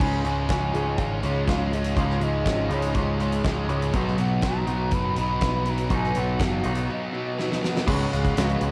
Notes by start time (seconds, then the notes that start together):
0.00 C#2 C#3 F3 G#3 C#4 D#4 F4 C#5 D#5 G#5, kick, crash
0.24 C#2 C#3 G#3 C#4 G#5, closed hi-hat
0.48 C#2 C#3 F3 G#3 C#4 G#5, kick, snare, closed hi-hat
0.72 C#2 C#3 F3 G#3 C#4 D#4, closed hi-hat
0.98 G#1 C#3 F3 G#3 C#4 F5, kick, closed hi-hat
1.23 C#2 C#3 F3 G#3 C#4 F5, closed hi-hat
1.48 C#2 C#3 G#3 C#4 D#4, kick, snare, closed hi-hat
1.71 C#3 G#3 C#4 D#5, closed hi-hat
1.84 closed hi-hat
1.96 C#2 C#3 F3 G#3 C#4 D#4 F5, kick, closed hi-hat
2.10 snare
2.21 C#2 C#3 G#3 C#4 D#5, closed hi-hat
2.45 G#1 C#3 F3 G#3 C#4, kick, snare, closed hi-hat
2.69 C#2 C#3 F3 G#3 D#4, closed hi-hat
2.73 G#3 C#4
2.82 closed hi-hat
2.94 C#2 C#3 F3 G#3 C#4, kick, closed hi-hat
3.20 C#3 F3 G#3 C#4, closed hi-hat
3.32 closed hi-hat
3.44 C#2 C#3 G#3 C#4 D#4, kick, snare, closed hi-hat
3.69 C#2 C#3 G#3 C#4, closed hi-hat
3.82 closed hi-hat
3.92 B1 B2 F#3 B3 F#4 B4, kick, closed hi-hat
3.96 D#4
4.08 snare
4.18 B1 B2 F#3 B3 F#5, closed hi-hat
4.42 B1 B2 F#3 B3 A#5, kick, snare, closed hi-hat
4.67 B1 B2 F#3 B3 D#4, closed hi-hat
4.91 F#1 B2 F#3 B3 B5, kick, closed hi-hat
5.16 B1 B2 F#3 B3 B5, closed hi-hat
5.41 B1 B2 F#3 B3 D#4, kick, snare, closed hi-hat
5.66 B2 F#3 B3, closed hi-hat
5.70 A#5
5.78 closed hi-hat
5.90 B1 B2 F#3 B3 D#4, kick, closed hi-hat
5.95 G#5
6.04 snare
6.15 B1 B2 F#3 B3 F#5, closed hi-hat
6.39 F#1 B2 F#3 B3, kick, snare, closed hi-hat
6.44 F5
6.63 B1 B2 F#3 B3 D#4, closed hi-hat
6.75 closed hi-hat
6.90 B2 F#3 B3 D#5
7.12 B2 F#3 B3
7.18 B2
7.39 B2 F#3 B3 D#4, snare
7.52 snare
7.62 B2 F#3 A#3 B3, snare
7.77 snare
7.87 C#2 C#3 F#3 G#3 B3 C#4 F#4 B4 C#5 G#5, kick, crash
8.01 closed hi-hat
8.12 C#2 F#3 G#3 B3 C#4 F#4 F5, closed hi-hat
8.25 kick, closed hi-hat
8.35 C#2 C#3 G#3 B3 C#4 F#4, snare, closed hi-hat
8.50 closed hi-hat
8.60 C#2 G#3 B3 C#4 F#4, closed hi-hat